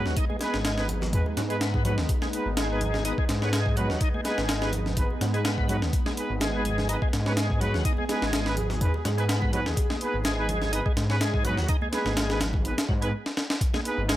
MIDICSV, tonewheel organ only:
0, 0, Header, 1, 2, 480
1, 0, Start_track
1, 0, Key_signature, 5, "minor"
1, 0, Tempo, 480000
1, 169, Time_signature, 4, 2, 24, 8
1, 14166, End_track
2, 0, Start_track
2, 0, Title_t, "Tonewheel organ"
2, 0, Program_c, 0, 16
2, 0, Note_on_c, 0, 54, 71
2, 159, Note_off_c, 0, 54, 0
2, 174, Note_on_c, 0, 63, 97
2, 250, Note_off_c, 0, 63, 0
2, 296, Note_on_c, 0, 56, 73
2, 364, Note_off_c, 0, 56, 0
2, 405, Note_on_c, 0, 56, 72
2, 876, Note_off_c, 0, 56, 0
2, 1371, Note_on_c, 0, 54, 69
2, 1417, Note_off_c, 0, 54, 0
2, 1500, Note_on_c, 0, 56, 74
2, 1566, Note_off_c, 0, 56, 0
2, 1607, Note_on_c, 0, 59, 77
2, 1837, Note_off_c, 0, 59, 0
2, 1850, Note_on_c, 0, 54, 71
2, 1928, Note_off_c, 0, 54, 0
2, 2223, Note_on_c, 0, 56, 74
2, 2287, Note_off_c, 0, 56, 0
2, 2570, Note_on_c, 0, 56, 97
2, 3038, Note_off_c, 0, 56, 0
2, 3052, Note_on_c, 0, 63, 95
2, 3129, Note_off_c, 0, 63, 0
2, 3185, Note_on_c, 0, 56, 71
2, 3248, Note_off_c, 0, 56, 0
2, 3426, Note_on_c, 0, 61, 75
2, 3489, Note_off_c, 0, 61, 0
2, 3535, Note_on_c, 0, 56, 99
2, 3761, Note_off_c, 0, 56, 0
2, 3772, Note_on_c, 0, 54, 71
2, 4000, Note_off_c, 0, 54, 0
2, 4014, Note_on_c, 0, 63, 96
2, 4090, Note_off_c, 0, 63, 0
2, 4145, Note_on_c, 0, 56, 74
2, 4208, Note_off_c, 0, 56, 0
2, 4251, Note_on_c, 0, 56, 73
2, 4719, Note_off_c, 0, 56, 0
2, 5214, Note_on_c, 0, 54, 72
2, 5258, Note_off_c, 0, 54, 0
2, 5339, Note_on_c, 0, 56, 72
2, 5405, Note_off_c, 0, 56, 0
2, 5454, Note_on_c, 0, 59, 76
2, 5681, Note_off_c, 0, 59, 0
2, 5692, Note_on_c, 0, 54, 71
2, 5769, Note_off_c, 0, 54, 0
2, 6061, Note_on_c, 0, 56, 75
2, 6126, Note_off_c, 0, 56, 0
2, 6410, Note_on_c, 0, 56, 96
2, 6878, Note_off_c, 0, 56, 0
2, 6891, Note_on_c, 0, 63, 90
2, 6969, Note_off_c, 0, 63, 0
2, 7021, Note_on_c, 0, 56, 72
2, 7086, Note_off_c, 0, 56, 0
2, 7263, Note_on_c, 0, 61, 71
2, 7327, Note_off_c, 0, 61, 0
2, 7370, Note_on_c, 0, 56, 97
2, 7598, Note_off_c, 0, 56, 0
2, 7607, Note_on_c, 0, 54, 70
2, 7837, Note_off_c, 0, 54, 0
2, 7849, Note_on_c, 0, 63, 101
2, 7928, Note_off_c, 0, 63, 0
2, 7984, Note_on_c, 0, 56, 73
2, 8048, Note_off_c, 0, 56, 0
2, 8087, Note_on_c, 0, 56, 72
2, 8557, Note_off_c, 0, 56, 0
2, 9049, Note_on_c, 0, 54, 76
2, 9096, Note_off_c, 0, 54, 0
2, 9178, Note_on_c, 0, 56, 74
2, 9245, Note_off_c, 0, 56, 0
2, 9286, Note_on_c, 0, 59, 79
2, 9517, Note_off_c, 0, 59, 0
2, 9530, Note_on_c, 0, 54, 73
2, 9608, Note_off_c, 0, 54, 0
2, 9897, Note_on_c, 0, 56, 76
2, 9964, Note_off_c, 0, 56, 0
2, 10247, Note_on_c, 0, 56, 97
2, 10717, Note_off_c, 0, 56, 0
2, 10727, Note_on_c, 0, 63, 96
2, 10806, Note_off_c, 0, 63, 0
2, 10857, Note_on_c, 0, 56, 73
2, 10924, Note_off_c, 0, 56, 0
2, 11095, Note_on_c, 0, 61, 72
2, 11163, Note_off_c, 0, 61, 0
2, 11208, Note_on_c, 0, 56, 99
2, 11437, Note_off_c, 0, 56, 0
2, 11450, Note_on_c, 0, 54, 75
2, 11678, Note_off_c, 0, 54, 0
2, 11689, Note_on_c, 0, 63, 99
2, 11767, Note_off_c, 0, 63, 0
2, 11820, Note_on_c, 0, 56, 75
2, 11886, Note_off_c, 0, 56, 0
2, 11929, Note_on_c, 0, 56, 77
2, 12398, Note_off_c, 0, 56, 0
2, 12885, Note_on_c, 0, 54, 73
2, 12934, Note_off_c, 0, 54, 0
2, 13016, Note_on_c, 0, 56, 76
2, 13084, Note_off_c, 0, 56, 0
2, 13737, Note_on_c, 0, 56, 75
2, 13804, Note_off_c, 0, 56, 0
2, 14086, Note_on_c, 0, 56, 99
2, 14166, Note_off_c, 0, 56, 0
2, 14166, End_track
0, 0, End_of_file